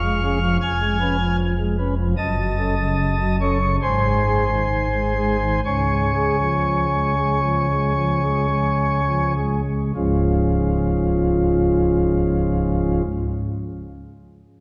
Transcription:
Already playing: F1 F2 F5 C#6 F6
0.02 G#3
0.22 C#4 G#4
0.42 F3
0.61 F1 F2 G#5 F6 G#6
0.80 G#3
1.00 C#4 B4
1.19 F3
1.58 G#3
1.78 C#4 B4
1.98 F3
2.17 F#1 F#2 D#5 A5 D#6
2.37 F#3
2.58 C#4 A4
2.78 C#3
3.19 F#3
3.41 C#4 A4 C#5 C#6
3.61 C#3
3.82 G#1 G#2 C5 G#5 C6
4.04 G#3
4.25 G#3 G#4
4.48 D#3
4.93 G#3
5.17 G#3 G#4
5.40 D#3
5.65 C#2 C#3 C#5 G#5 C#6
5.89 G#3
6.15 G#3 G#4
6.41 F3
6.92 G#3
7.17 G#3 G#4
7.43 F3
7.70 G#3
7.96 F3
8.23 G#3 G#4
8.50 G#3
9.07 F3
9.37 G#3 G#4
9.67 G#3
9.95 C#1 C#2 G#2 F3 G#3 C#4 F4

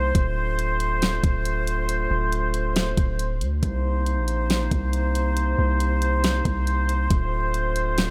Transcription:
Already playing: C2 C3 A#3 D#4 C5
0.15 D1 D3 A3 F4, kick, closed hi-hat
0.59 closed hi-hat
0.80 closed hi-hat
1.02 snare, closed hi-hat
1.24 D1, kick, closed hi-hat
1.45 closed hi-hat
1.67 closed hi-hat
1.89 closed hi-hat
2.11 D1
2.32 closed hi-hat
2.54 closed hi-hat
2.76 snare, closed hi-hat
2.97 D1, kick, closed hi-hat
3.19 closed hi-hat
3.41 D2, closed hi-hat
3.63 C2 C3 A#3 D#4 C5, kick, closed hi-hat
4.06 closed hi-hat
4.17 A#1
4.28 closed hi-hat
4.50 snare, closed hi-hat
4.71 C2, kick, closed hi-hat
4.93 closed hi-hat
5.15 closed hi-hat
5.37 closed hi-hat
5.59 C2
5.80 closed hi-hat
6.02 closed hi-hat
6.24 snare, closed hi-hat
6.45 C2, kick, closed hi-hat
6.67 closed hi-hat
6.89 closed hi-hat
7.10 D1 D3 A3 F4, kick, closed hi-hat
7.54 closed hi-hat
7.76 closed hi-hat
7.98 snare, closed hi-hat

